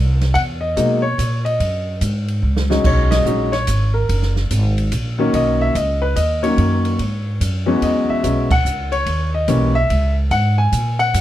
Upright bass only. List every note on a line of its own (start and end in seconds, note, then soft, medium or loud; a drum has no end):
0.00 0.34 C2 medium
0.35 0.75 E2 medium
0.77 1.17 B2 medium
1.18 1.58 A#2 medium
1.60 2.00 F#2 medium
2.01 2.41 G#2 medium
2.42 2.83 C#2 medium
2.84 3.25 B1 medium
3.25 3.66 A#1 medium
3.68 4.08 G#1 medium
4.09 4.49 F#1 medium
4.51 4.91 G#1 medium
4.92 5.32 A#1 medium
5.33 5.74 B1 medium
5.75 6.15 C#2 medium
6.16 6.56 D#2 medium
6.58 6.98 F#2 medium
6.99 7.39 G#2 medium
7.41 7.81 F#2 medium
7.82 8.07 E2 medium
8.09 muted upright bass stroke soft
8.24 8.64 B1 medium
8.65 9.05 C#2 medium
9.06 9.47 D#2 medium
9.48 9.88 B1 medium
9.90 10.30 C#2 medium
10.31 10.71 G#2 medium
10.72 11.13 A#2 medium
11.14 11.21 F#2 medium